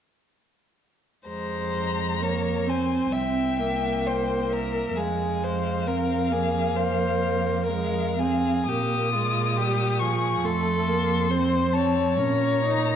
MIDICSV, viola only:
0, 0, Header, 1, 2, 480
1, 0, Start_track
1, 0, Key_signature, -4, "minor"
1, 0, Tempo, 947867
1, 643, Time_signature, 4, 2, 24, 8
1, 1117, Tempo, 910470
1, 3997, Tempo, 1001669
1, 4477, Tempo, 881057
1, 6813, End_track
2, 0, Start_track
2, 0, Title_t, "Viola"
2, 0, Program_c, 0, 41
2, 645, Note_on_c, 0, 56, 29
2, 1121, Note_on_c, 0, 58, 35
2, 1129, Note_off_c, 0, 56, 0
2, 1361, Note_on_c, 0, 60, 33
2, 1368, Note_off_c, 0, 58, 0
2, 1599, Note_off_c, 0, 60, 0
2, 1602, Note_on_c, 0, 60, 35
2, 1847, Note_on_c, 0, 58, 35
2, 1855, Note_off_c, 0, 60, 0
2, 2572, Note_on_c, 0, 56, 32
2, 2580, Note_off_c, 0, 58, 0
2, 3049, Note_on_c, 0, 60, 36
2, 3057, Note_off_c, 0, 56, 0
2, 3282, Note_on_c, 0, 58, 37
2, 3290, Note_off_c, 0, 60, 0
2, 4004, Note_on_c, 0, 56, 42
2, 4011, Note_off_c, 0, 58, 0
2, 4240, Note_off_c, 0, 56, 0
2, 4247, Note_on_c, 0, 60, 38
2, 4477, Note_off_c, 0, 60, 0
2, 4489, Note_on_c, 0, 58, 39
2, 4738, Note_on_c, 0, 56, 39
2, 4746, Note_off_c, 0, 58, 0
2, 4972, Note_on_c, 0, 55, 39
2, 4981, Note_off_c, 0, 56, 0
2, 5206, Note_on_c, 0, 53, 40
2, 5214, Note_off_c, 0, 55, 0
2, 5442, Note_on_c, 0, 57, 44
2, 5450, Note_off_c, 0, 53, 0
2, 5679, Note_on_c, 0, 58, 39
2, 5688, Note_off_c, 0, 57, 0
2, 5912, Note_off_c, 0, 58, 0
2, 5914, Note_on_c, 0, 60, 42
2, 6145, Note_off_c, 0, 60, 0
2, 6148, Note_on_c, 0, 60, 43
2, 6397, Note_on_c, 0, 61, 41
2, 6405, Note_off_c, 0, 60, 0
2, 6635, Note_off_c, 0, 61, 0
2, 6638, Note_on_c, 0, 63, 43
2, 6813, Note_off_c, 0, 63, 0
2, 6813, End_track
0, 0, End_of_file